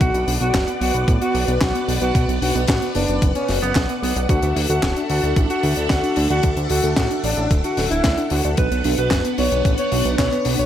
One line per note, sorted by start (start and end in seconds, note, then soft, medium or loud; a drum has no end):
0.00 0.12 B1 loud
0.00 4.25 B3 medium
0.00 0.13 B3 medium
0.00 0.32 F#4 loud
0.00 4.25 B4 medium
0.00 4.25 D5 medium
0.00 10.66 F#5 medium
0.00 kick loud
0.00 closed hi-hat medium
0.14 0.25 B1 medium
0.14 0.22 B3 medium
0.14 closed hi-hat medium
0.27 0.38 B1 medium
0.27 0.32 D4 loud
0.27 open hi-hat loud
0.41 0.52 B1 medium
0.41 0.49 B3 medium
0.41 0.72 F#4 medium
0.41 closed hi-hat medium
0.54 0.65 F#1 loud
0.54 0.59 F#4 medium
0.54 kick loud
0.54 snare loud
0.54 clap loud
0.54 closed hi-hat loud
0.68 0.73 B3 loud
0.68 closed hi-hat medium
0.81 0.92 B1 loud
0.81 0.93 B3 medium
0.81 1.13 F#4 medium
0.81 open hi-hat loud
0.94 1.05 B1 medium
0.94 0.99 B4 medium
0.94 closed hi-hat medium
1.08 1.19 A1 loud
1.08 1.16 B3 medium
1.08 kick loud
1.08 closed hi-hat medium
1.21 1.30 B3 medium
1.21 1.53 F#4 medium
1.21 closed hi-hat medium
1.34 1.45 B1 medium
1.34 1.43 F#4 medium
1.34 open hi-hat medium
1.48 1.59 B1 medium
1.48 1.56 B3 medium
1.48 closed hi-hat medium
1.61 1.72 B1 loud
1.61 1.93 F#4 medium
1.61 1.70 B4 medium
1.61 kick loud
1.61 snare loud
1.61 clap loud
1.61 closed hi-hat medium
1.75 1.80 B3 medium
1.75 closed hi-hat medium
1.88 1.99 B1 medium
1.88 2.01 B3 medium
1.88 open hi-hat loud
2.01 2.12 B1 medium
2.01 2.33 F#4 medium
2.01 2.07 B4 medium
2.01 closed hi-hat medium
2.15 2.26 B1 loud
2.15 2.27 B3 medium
2.15 kick loud
2.15 closed hi-hat medium
2.28 2.39 B1 medium
2.28 2.37 B3 medium
2.28 closed hi-hat medium
2.42 2.53 B1 medium
2.42 2.47 D4 loud
2.42 2.63 F#4 medium
2.42 open hi-hat loud
2.55 2.66 B1 medium
2.55 2.63 B3 medium
2.55 closed hi-hat medium
2.68 2.79 A1 loud
2.68 2.90 F#4 medium
2.68 2.74 F#4 medium
2.68 kick loud
2.68 snare loud
2.68 clap loud
2.68 closed hi-hat loud
2.82 2.87 B3 loud
2.82 closed hi-hat soft
2.95 3.06 F#1 medium
2.95 3.08 B3 medium
2.95 3.27 D4 medium
2.95 open hi-hat medium
3.08 3.20 F#1 medium
3.08 3.14 B4 medium
3.08 closed hi-hat soft
3.22 3.33 F#1 medium
3.22 3.30 B3 medium
3.22 kick loud
3.22 closed hi-hat loud
3.35 3.44 B3 medium
3.35 3.56 C#4 medium
3.35 closed hi-hat soft
3.48 3.60 F#1 medium
3.48 3.57 F#4 medium
3.48 snare soft
3.48 open hi-hat loud
3.62 3.73 F#1 medium
3.62 3.94 B3 loud
3.62 3.71 B3 medium
3.62 closed hi-hat medium
3.75 3.87 B1 loud
3.75 3.84 B4 medium
3.75 kick loud
3.75 snare loud
3.75 clap medium
3.75 closed hi-hat medium
3.89 3.94 B3 loud
3.89 closed hi-hat soft
4.02 4.13 B1 medium
4.02 4.24 B3 medium
4.02 4.15 B3 medium
4.02 open hi-hat loud
4.16 4.27 B1 medium
4.16 4.21 B4 medium
4.16 closed hi-hat medium
4.29 4.40 D2 loud
4.29 8.54 D4 medium
4.29 4.42 D4 medium
4.29 4.61 F#4 medium
4.29 8.54 A4 medium
4.29 8.54 E5 medium
4.29 kick loud
4.29 closed hi-hat medium
4.43 4.54 D2 medium
4.43 4.51 D4 medium
4.43 closed hi-hat medium
4.56 4.67 D2 medium
4.56 4.61 F#4 loud
4.56 open hi-hat loud
4.69 4.80 D2 medium
4.69 5.01 F#4 medium
4.69 4.78 A4 loud
4.69 closed hi-hat soft
4.82 4.94 D1 loud
4.82 4.88 A4 medium
4.82 kick loud
4.82 snare loud
4.82 clap loud
4.82 closed hi-hat loud
4.96 5.01 D4 loud
4.96 closed hi-hat medium
5.10 5.21 D2 loud
5.10 5.22 D4 medium
5.10 5.41 F#4 medium
5.10 open hi-hat loud
5.23 5.34 D2 medium
5.23 5.28 D5 medium
5.23 closed hi-hat soft
5.36 5.47 A1 loud
5.36 5.45 D4 medium
5.36 kick loud
5.36 closed hi-hat medium
5.50 5.58 D4 medium
5.50 5.81 F#4 medium
5.50 closed hi-hat medium
5.63 5.74 D2 loud
5.63 5.71 A4 medium
5.63 open hi-hat loud
5.77 5.88 D2 medium
5.77 5.85 D4 medium
5.77 closed hi-hat soft
5.90 6.01 D2 loud
5.90 6.22 F#4 medium
5.90 5.98 D5 medium
5.90 kick loud
5.90 snare loud
5.90 clap medium
5.90 closed hi-hat loud
6.03 6.08 D4 medium
6.03 closed hi-hat medium
6.16 6.28 D2 medium
6.16 6.29 D4 medium
6.16 open hi-hat medium
6.30 6.41 D2 medium
6.30 6.62 F#4 medium
6.30 6.35 D5 medium
6.30 closed hi-hat medium
6.43 6.54 D2 loud
6.43 6.56 D4 medium
6.43 kick loud
6.43 closed hi-hat loud
6.57 6.68 D2 medium
6.57 6.65 D4 medium
6.57 closed hi-hat medium
6.70 6.81 D2 medium
6.70 6.75 F#4 loud
6.70 6.92 F#4 medium
6.70 open hi-hat loud
6.84 6.94 D2 medium
6.84 6.92 A4 loud
6.84 closed hi-hat medium
6.96 7.08 A1 loud
6.96 7.18 F#4 medium
6.96 7.02 A4 medium
6.96 kick medium
6.96 snare loud
6.96 clap loud
6.96 closed hi-hat loud
7.11 7.16 D4 loud
7.11 closed hi-hat medium
7.24 7.35 A1 medium
7.24 7.36 D4 medium
7.24 7.56 D4 medium
7.24 open hi-hat loud
7.37 7.48 A1 medium
7.37 7.42 D5 medium
7.37 closed hi-hat medium
7.51 7.62 D1 loud
7.51 7.59 D4 medium
7.51 kick loud
7.51 closed hi-hat loud
7.64 7.72 D4 medium
7.64 7.85 F#4 medium
7.64 closed hi-hat medium
7.77 7.88 D1 medium
7.77 7.86 A4 medium
7.77 snare soft
7.77 open hi-hat loud
7.91 8.02 D1 medium
7.91 7.99 D4 medium
7.91 8.22 E4 loud
7.91 closed hi-hat medium
8.04 8.15 D2 loud
8.04 8.13 D5 medium
8.04 kick loud
8.04 snare loud
8.04 clap medium
8.04 closed hi-hat loud
8.18 8.23 D4 loud
8.18 closed hi-hat soft
8.30 8.42 D2 medium
8.30 8.43 D4 medium
8.30 8.52 F#4 medium
8.30 open hi-hat loud
8.44 8.55 D2 medium
8.44 8.50 D5 medium
8.44 closed hi-hat medium
8.57 8.69 B1 loud
8.57 10.66 B3 medium
8.57 8.70 B3 medium
8.57 10.66 D4 medium
8.57 10.66 B4 medium
8.57 8.89 B4 loud
8.57 kick loud
8.57 closed hi-hat medium
8.71 8.82 B1 medium
8.71 8.79 B3 medium
8.71 closed hi-hat medium
8.84 8.96 B1 medium
8.84 8.90 D4 loud
8.84 open hi-hat loud
8.98 9.09 B1 medium
8.98 9.06 F#4 loud
8.98 9.30 B4 medium
8.98 closed hi-hat medium
9.11 9.22 F#1 loud
9.11 9.16 F#4 medium
9.11 kick medium
9.11 snare loud
9.11 clap loud
9.11 closed hi-hat loud
9.25 9.30 B3 loud
9.25 closed hi-hat medium
9.38 9.49 B1 medium
9.38 9.51 B3 medium
9.38 9.70 C#5 medium
9.38 open hi-hat loud
9.52 9.62 B1 medium
9.52 9.57 B4 medium
9.52 closed hi-hat medium
9.65 9.76 A1 loud
9.65 9.73 B3 medium
9.65 kick loud
9.65 closed hi-hat medium
9.78 9.87 B3 medium
9.78 10.10 C#5 medium
9.78 closed hi-hat medium
9.92 10.03 B1 loud
9.92 10.00 F#4 medium
9.92 open hi-hat loud
10.05 10.16 B1 medium
10.05 10.14 B3 medium
10.05 closed hi-hat medium
10.19 10.29 B1 loud
10.19 10.27 B4 medium
10.19 10.50 C#5 medium
10.19 kick loud
10.19 snare loud
10.19 clap loud
10.19 closed hi-hat loud
10.32 10.37 B3 loud
10.32 closed hi-hat soft
10.45 10.56 B1 medium
10.45 10.58 B3 medium
10.45 open hi-hat loud
10.59 10.66 B1 medium
10.59 10.64 B4 medium
10.59 10.66 C#5 medium
10.59 closed hi-hat medium